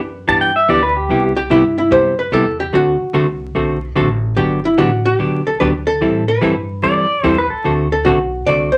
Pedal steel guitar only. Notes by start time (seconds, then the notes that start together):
0.29 A5
0.41 G5
0.56 E5
0.70 D5
0.83 B4
0.97 G4
6.84 D5
7.26 C5
7.38 B4
7.50 A4